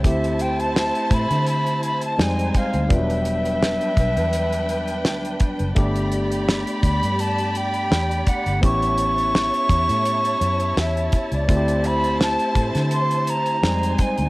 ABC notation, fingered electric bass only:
X:1
M:4/4
L:1/16
Q:"Swing 16ths" 1/4=84
K:G
V:1 name="Fingered electric bass" clef=bass
D,,4- D,, z A,, D,4- D, =F,,2 z D,, | E,,,4- E,,, z B,,, E,,4- E,, D,,2 z F,,, | G,,,4- G,,, z D,, G,,4- G,, E,,2 z G,,, | A,,,4- A,,, z E,, A,,3 F,,2 E,,2 z ^C,, |
D,,4- D,, z A,, D,4- D, =F,,2 z D,, |]